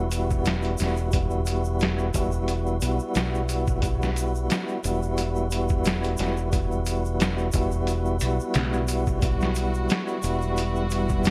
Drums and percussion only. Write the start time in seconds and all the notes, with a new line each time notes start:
0.11 closed hi-hat, shaker
0.30 kick, shaker
0.45 snare, closed hi-hat, shaker
0.62 closed hi-hat, shaker
0.78 snare, closed hi-hat, shaker
0.97 shaker
1.12 kick, closed hi-hat, shaker
1.31 shaker
1.46 closed hi-hat, shaker
1.64 shaker
1.79 snare, closed hi-hat, shaker
1.99 shaker
2.14 kick, closed hi-hat, shaker
2.32 shaker
2.48 closed hi-hat, shaker
2.67 shaker
2.81 closed hi-hat, shaker
2.99 shaker
3.15 snare, closed hi-hat, shaker
3.35 shaker
3.49 closed hi-hat, shaker
3.67 kick, shaker
3.82 kick, closed hi-hat, shaker
4.02 snare, shaker
4.16 closed hi-hat, shaker
4.35 shaker
4.50 snare, closed hi-hat, shaker
4.68 shaker
4.84 closed hi-hat, shaker
5.03 shaker
5.17 closed hi-hat, shaker
5.36 shaker
5.51 closed hi-hat, shaker
5.69 kick, shaker
5.84 snare, closed hi-hat, shaker
6.04 closed hi-hat, shaker
6.17 snare, closed hi-hat, shaker
6.37 shaker
6.52 kick, closed hi-hat, shaker
6.71 shaker
6.86 closed hi-hat, shaker
7.05 shaker
7.20 snare, closed hi-hat, shaker
7.38 shaker
7.52 kick, closed hi-hat, shaker
7.71 shaker
7.87 closed hi-hat, shaker
8.06 shaker
8.20 closed hi-hat, shaker
8.40 shaker
8.54 snare, closed hi-hat, shaker
8.73 shaker
8.88 closed hi-hat, shaker
9.07 kick, shaker
9.22 kick, closed hi-hat, shaker
9.41 snare, shaker
9.55 closed hi-hat, shaker
9.74 shaker
9.89 snare, closed hi-hat, shaker
10.08 shaker
10.23 closed hi-hat, shaker
10.42 shaker
10.57 closed hi-hat, shaker
10.76 shaker
10.90 closed hi-hat, shaker
11.09 kick, shaker
11.24 snare, closed hi-hat, shaker